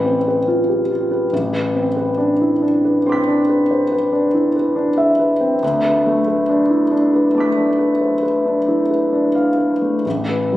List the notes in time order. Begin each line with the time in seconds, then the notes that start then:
Already playing: A1 B4
0.05 C4
0.28 B4
0.48 F4
0.69 G4
0.91 F4
1.11 B4
1.32 A1
1.53 B4
1.75 C4
1.97 B4
2.18 D4
2.41 E4
2.62 D4
2.85 B4
3.06 C4 C6 D6
3.12 B6
3.28 D4
3.49 B4
3.71 C5
3.92 B4
4.13 D4
4.34 E4
4.56 B4
4.76 D4
4.98 E5
5.19 B4
5.40 C4
5.63 D2
5.84 B4
6.06 A3
6.28 B4
6.49 D4
6.70 E4
6.91 D4
7.13 B4
7.35 A3 A5 D6
7.40 B6
7.56 D4
7.78 B4
8.01 C5
8.23 B4
8.46 D4
8.68 E4
8.91 B4
9.13 D4
9.35 F5
9.58 B4
9.82 A3
10.06 A1
10.29 B4
10.53 G3